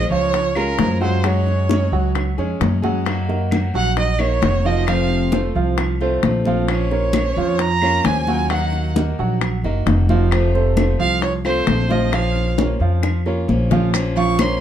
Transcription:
Already playing: F3 G#3 C#4 F4
0.10 C#2 F3 F4 C#5 F5, high conga
0.33 muted steel-string acoustic guitar stroke, high bongo, high conga
0.55 G#3 C#4 F4 G#4 A#4, high bongo, high conga, claves
0.78 F#2 F3 G#3 C#4 F4, high bongo, low bongo, high conga
1.01 F#3 G#3 C#4 F4 F#4 C5 F#5, high bongo
1.23 F#3 G#3 C#4 F#4 G#4 C#5 F#5, high bongo, high conga, claves
1.47 high bongo, high conga
1.69 F#3 G#3 C#4 G#4 C#5, high bongo, high conga
1.92 C#2 F#3 F#4 F#5
2.15 muted steel-string acoustic guitar stroke, high bongo, high conga, claves
2.38 F2 G#3 C#4 G#4 C#5, high bongo, high conga
2.60 F#2 F#3 G#3 C#4 G#4, high bongo, low bongo, high conga
2.82 F#3 G#3 C#4 F#4 G#4 F#5, high conga
3.05 F#3 A#3 D#4 F#4, high bongo, high conga, claves
3.29 A#3 A#4 D#5, high bongo, high conga
3.51 F#3 A#3 D#4 F#4, high bongo, high conga, claves
3.74 A#1 F#3 F#4 F#5, high conga
3.97 D#5, muted steel-string acoustic guitar stroke, high bongo, high conga
4.19 A#3 D#4 F#4 A#4 C#5 D#5, high bongo, high conga, claves
4.42 F1 F#3 A#3 D#4 F#4, high bongo, low bongo, high conga
4.65 F3 A#3 D#4 F4 F#4 D#5 F5, high bongo
4.87 C3 F3 A3 C4 F4 F5, high bongo, high conga, claves
5.10 high bongo, high conga
5.32 F3 A3 C4 F4 A4 C5, high bongo, high conga
5.55 C2 F3 F4 F5
5.78 muted steel-string acoustic guitar stroke, high bongo, high conga, claves
6.01 F3 A3 C4 F4 A4 C5, high bongo, high conga
6.23 A#1 F3 A3 C4 F4, high bongo, low bongo, high conga
6.45 F3 A3 C4 F4 F5, high conga
6.68 F3 A#3 C#4 F4 C#5, high bongo, high conga, claves
6.91 A#3 A#4 C#5, high bongo, high conga
7.13 F3 A#3 C#4 F4, high bongo, high conga, claves
7.36 F2 F3 F4 F5, high conga
7.59 A#5, muted steel-string acoustic guitar stroke, high bongo, high conga
7.82 A#3 C#4 F4 A#4 C#5, high bongo, high conga, claves
8.04 D#2 F3 A#3 C#4 F4 G#5, high bongo, low bongo, high conga
8.27 F#3 A#3 C#4 F4 F#4 F#5, high bongo, high conga
8.50 D#3 F#3 A#3 D#4 F#4 F#5, high bongo, high conga, claves
8.73 high bongo, high conga
8.96 D#3 A#3 D#4 F#4 A#4 D#5, high bongo, high conga
9.19 A#1 F#3 F#4 F#5
9.41 muted steel-string acoustic guitar stroke, high bongo, high conga, claves
9.63 F#1 A#3 D#4 F#4 A#4 D#5, high bongo, high conga
9.86 F1 D#3 A#3 D#4 F#4, high bongo, low bongo, high conga
10.09 F3 A#3 D#4 F4 F#4 F5, high conga
10.31 C3 F3 A3 C4 F4, high bongo, high conga, claves
10.54 A3 A4 C5, high bongo, high conga
10.77 F3 A3 C4 F4, high bongo, high conga, claves
10.99 C2 F3 F4 F5, high conga
11.22 C#5, muted steel-string acoustic guitar stroke, high bongo, high conga
11.45 F3 A3 C4 F4 A4 C5, high bongo, high conga, claves
11.67 A#1 F3 A3 C4 F4, high bongo, low bongo, high conga
11.89 F3 A3 C4 F4 D#5 F5, high bongo, high conga
12.12 F3 A#3 C#4 F4 F5, high bongo, high conga, claves
12.36 high bongo, high conga
12.57 F3 A#3 C#4 F4 A#4 C#5, high bongo, high conga
12.80 F2 F3 F4 F5
13.03 muted steel-string acoustic guitar stroke, high bongo, high conga, claves
13.26 A#3 C#4 F4 A#4 C#5, high conga
13.48 A#1 F3 A#3 C#4 F4, high conga
13.71 F3 A#3 C#4 F4 F5, low bongo, high conga
13.94 F3 A#3 C#4 F4, high bongo, high conga, claves, maracas
14.16 F3 F4 F5 C#6, high bongo, high conga, maracas
14.39 F3 A#3 C#4 F4 A#4 C#5 C6, high bongo, high conga, claves, maracas

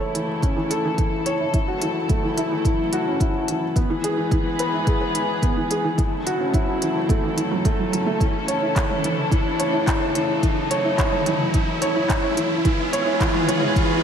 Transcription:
Already playing: F#1 C#3 E3 A3 E4 A4, riser
0.00 C#5
0.15 E3, closed hi-hat
0.42 C#4, kick, closed hi-hat
0.57 E3
0.70 A4, closed hi-hat
0.85 E3
0.98 E3, kick, closed hi-hat
1.26 C#5, closed hi-hat
1.40 E4
1.53 F#1 F#3 A3 E4, kick, closed hi-hat
1.68 F#4
1.82 E3, closed hi-hat
2.09 A3, kick, closed hi-hat
2.23 E3
2.38 E4, closed hi-hat
2.52 E3
2.65 E3, kick, closed hi-hat
2.93 F#4, closed hi-hat
3.07 C#4
3.20 E4, kick, closed hi-hat
3.35 F#4
3.48 E3, closed hi-hat
3.75 F#1 E3 G#3 B3 G#4 B4, kick, closed hi-hat
3.90 E3
4.04 G#4, closed hi-hat
4.18 E3
4.31 E3, kick, closed hi-hat
4.59 B4, closed hi-hat
4.74 E4
4.87 G#4, kick, closed hi-hat
5.01 B4
5.15 E3, closed hi-hat
5.42 B3, kick, closed hi-hat
5.57 E3
5.71 G#4, closed hi-hat
5.84 E3
5.98 F#1 C#3 E3 F#3 A3 E4 A4, kick, closed hi-hat
6.26 F#4, closed hi-hat
6.40 C#4
6.54 E4, kick, closed hi-hat
6.68 F#4
6.82 E3, closed hi-hat
7.09 A3, kick, closed hi-hat
7.24 E3
7.37 E3, closed hi-hat
7.51 F#3
7.65 A3, kick, closed hi-hat
7.79 F#3
7.92 F#3, closed hi-hat
8.06 A3
8.20 F#1 E3 E4, kick, closed hi-hat
8.48 C#5, closed hi-hat
8.62 E4
8.75 C#5, kick, clap, closed hi-hat
8.90 C#5, mid tom
9.04 E3, closed hi-hat, mid tom
9.31 E3, kick, closed hi-hat
9.59 C#5, closed hi-hat
9.73 E4
9.87 C#5, kick, clap, closed hi-hat
10.01 C#5
10.15 E3, closed hi-hat
10.43 F#1 E3 F#3 E4, kick, closed hi-hat
10.71 C#5, closed hi-hat
10.84 E4
10.98 C#5, kick, clap, closed hi-hat
11.12 C#5, mid tom
11.26 E3, closed hi-hat, mid tom
11.54 E3, kick, closed hi-hat
11.82 C#5, closed hi-hat
11.96 E4
12.09 C#5, kick, clap, closed hi-hat
12.23 C#5
12.37 E3, closed hi-hat
12.65 E3 G#3 B3 G#4 B4, kick, closed hi-hat
12.93 C#5, closed hi-hat
13.07 E4
13.20 E3, kick, clap, closed hi-hat
13.35 mid tom
13.48 C#5, closed hi-hat, mid tom
13.62 E4
13.76 E3, kick, closed hi-hat

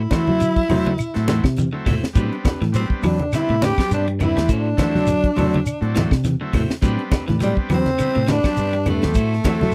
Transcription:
Already playing: E4
0.11 E3 F#3 A3 C4 E4 F#4 C5, kick, snare, closed hi-hat, high conga, claves, shekere
0.27 F#3, high conga
0.40 D3, closed hi-hat, shekere
0.56 kick, closed hi-hat
0.69 C3 F#3 A3 C4 E4 F#4 C5, open hi-hat, high conga, low conga, claves, shekere
0.85 D3, closed hi-hat, high conga
0.98 closed hi-hat, claves, shekere
1.14 A2 F#3 A3 C4 E4, snare, closed hi-hat
1.27 E3 A3 E4 F#4 C5, snare, closed hi-hat, high conga, shekere
1.44 C3, kick, snare, claves
1.57 E3, closed hi-hat, high conga, shekere
1.72 D3 F#3 A3 C4 E4
1.86 A2 C3 A3 E4 F#4 C5, kick, open hi-hat, high conga, low conga, claves, shekere
2.03 muted fingered electric bass stroke, snare
2.13 A2 F#3 G3 B3 C4 D4 G4 B4, kick, closed hi-hat, shekere
2.32 closed hi-hat
2.44 C4 D4 G4 B4, muted fingered electric bass stroke, kick, snare, closed hi-hat, high conga, claves, shekere
2.61 A2 E3, snare, closed hi-hat
2.72 F#3 G3 B3 C4 D4, closed hi-hat, shekere
2.77 C4
2.90 muted fingered electric bass stroke, kick
3.02 E3 F#3 C4 D4 G4 B4, open hi-hat, high conga, low conga, claves, shekere
3.19 closed hi-hat, high conga
3.33 D3 G3 B3 C4 D4 E4, muted fingered electric bass stroke, snare, closed hi-hat, claves, shekere
3.49 A2 C3, closed hi-hat
3.61 D3 C4 D4 G4 B4, snare, closed hi-hat, high conga, shekere
3.65 G4
3.78 F#3 G3 B3 C4 D4, kick, snare, closed hi-hat, claves
3.91 G2 D4, closed hi-hat, shekere
4.08 G3, closed hi-hat
4.19 C4 D4 E4 G4 B4, closed hi-hat, high conga, low conga, claves, shekere
4.25 E4
4.35 E2 G3 A3 B3 C4 D4, snare, closed hi-hat
4.48 A2 A3 E4 F#4 C5, kick, closed hi-hat, shekere
4.53 D4
4.77 E3 F#3 A3 C4 E4 F#4 C5, kick, snare, closed hi-hat, high conga, claves, shekere
4.95 F#3, snare, high conga
5.07 D3, snare, closed hi-hat, low conga, shekere
5.24 kick, closed hi-hat
5.36 C3 F#3 A3 C4 E4 F#4 C5, open hi-hat, high conga, low conga, claves, shekere
5.53 D3, closed hi-hat, high conga
5.66 closed hi-hat, claves, shekere
5.81 A2 F#3 A3 C4 D4, closed hi-hat
5.95 E3 A3 E4 F#4 C5, snare, closed hi-hat, high conga, low conga, shekere
6.11 C3, kick, snare, claves
6.24 E3, snare, closed hi-hat, high conga, shekere
6.41 D3 F#3 A3 C4 E4
6.53 A2 C3 A3 E4 F#4 C5, kick, open hi-hat, high conga, low conga, claves, shekere
6.70 muted fingered electric bass stroke, snare
6.81 A2 F#3 G3 B3 C4 D4 G4 B4, kick, snare, closed hi-hat, shekere
6.99 closed hi-hat
7.11 C4 D4 G4 B4, muted fingered electric bass stroke, kick, snare, closed hi-hat, high conga, claves, shekere
7.27 A2 E3 D4 G4 B4, snare, closed hi-hat, high conga
7.40 F#3 G3 B3 C4 D4, snare, closed hi-hat, shekere
7.57 muted fingered electric bass stroke, kick
7.69 E3 F#3 C4 D4 G4 B4, snare, open hi-hat, high conga, low conga, claves, shekere
7.74 C4
7.86 snare, closed hi-hat, high conga
7.99 D3 G3 B3 C4 E4, muted fingered electric bass stroke, closed hi-hat, claves, shekere
8.15 A2 C3, closed hi-hat
8.27 D3 D4 G4 B4, muted clean electric guitar stroke, snare, closed hi-hat, high conga, shekere
8.43 F#3 G3 B3 C4 D4, kick, snare, closed hi-hat, claves
8.57 G2, closed hi-hat, shekere
8.73 G3, closed hi-hat
8.86 A3 C4 D4 G4 B4, closed hi-hat, high conga, low conga, claves, shekere
9.02 E2 F#3 G3 B3 C4 D4, snare, closed hi-hat
9.14 A2 E4 F#4 C5, muted clean electric guitar stroke, kick, closed hi-hat, shekere
9.33 snare
9.44 E3 F#3 A3 C4 E4 F#4 C5, kick, snare, closed hi-hat, high conga, claves, shekere
9.61 F#3 E4 F#4 C5, snare, high conga

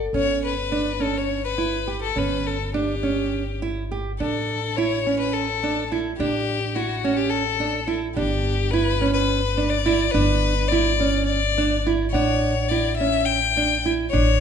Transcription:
0.13 G1 C#4 C#5
0.45 B4
0.72 D4
1.00 C#4 A4
1.18 C#5
1.45 B4
1.58 E4
1.87 G4
2.02 A4
2.16 G1 C#4 B4
2.47 A4
2.74 D4 G4
3.03 C#4
3.62 E4
3.92 G4
4.20 A1 D4 A4
4.77 E4 C#5
5.07 C#4
5.19 B4
5.33 A4
5.63 D4
5.92 E4
6.17 A1 D4 G4
6.75 E4 F#4
7.04 C#4
7.17 G4
7.30 A4
7.60 D4
7.87 E4
8.15 G1 D4 G4
8.71 E4 B4
9.01 C#4
9.13 B4
9.57 D4
9.69 D5
9.86 E4
10.11 G1 D4 B4
10.68 E4 D5
11.00 C#4
11.26 D5
11.58 D4
11.87 E4
12.11 A1 D4 C#5 F#5
12.68 E4 D5
12.97 C#4 E5
13.25 G5
13.57 D4
13.86 E4
14.10 A1 D4 C#5

